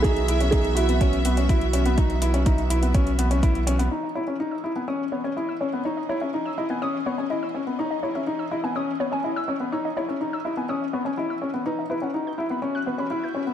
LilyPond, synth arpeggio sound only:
\new Staff \with { instrumentName = "Synth arpeggio sound" } { \time 4/4 \key cis \minor \tempo 4 = 124 r1 | r1 | cis''16 dis''16 cis''16 e''16 r16 e'''16 dis''16 gis''16 dis'''16 r16 cis''16 gis''16 dis''16 e'''16 cis''16 r16 | cis''16 dis''16 cis''16 e''16 r16 e'''16 dis''16 gis''16 dis'''16 r16 cis''16 gis''16 dis''16 e'''16 cis''16 r16 |
cis''16 dis''16 cis''16 e''16 r16 e'''16 dis''16 gis''16 dis'''16 r16 cis''16 gis''16 dis''16 e'''16 cis''16 r16 | cis''16 dis''16 cis''16 e''16 r16 e'''16 dis''16 gis''16 dis'''16 r16 cis''16 gis''16 dis''16 e'''16 cis''16 r16 | b'16 e''16 b'16 fis''16 r16 g'''16 e''16 b''16 r16 fis'''16 b'16 b''16 e''16 g'''16 b'16 r16 | }